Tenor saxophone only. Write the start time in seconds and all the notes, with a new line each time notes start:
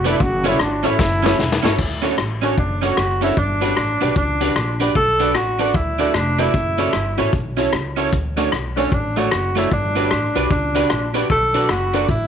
2.44 C#4
2.59 D4
2.84 F#4
3.24 E4
3.38 D4
4.17 D4
4.96 A4
5.36 F#4
5.75 E4
6.15 D4
6.40 E4
8.78 C#4
8.94 D4
9.18 F#4
9.58 E4
9.73 D4
10.52 D4
11.32 A4
11.71 F#4
12.10 E4